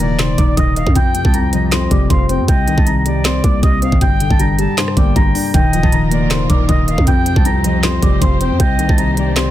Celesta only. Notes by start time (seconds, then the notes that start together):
Already playing: A#5 A#6
0.19 C5 C6
0.38 D5 D6
0.57 D#5 D#6
0.96 G5 G6
1.25 A5 A6
1.34 A#5 A#6
1.72 C5 C6
1.91 D5 D6
2.10 C5 C6
2.48 G5 G6
2.78 A5 A6
2.87 A#5 A#6
3.25 C5 C6
3.44 D5 D6
3.63 D#5 D#6
4.01 G5 G6
4.31 A5 A6
4.39 A#5 A#6
4.77 C5 C6
4.97 D5 D6
5.16 A#5 A#6
5.54 G5 G6
5.83 A5 A6
5.92 A#5 A#6
6.31 C5 C6
6.49 D5 D6
6.68 D#5 D#6
7.07 G5 G6
7.36 A5
7.45 A#5 A#6
7.84 C5 C6
8.03 D5 D6
8.21 C5 C6
8.60 G5 G6
8.89 A5 A6
8.98 A#5 A#6
9.36 C5 C6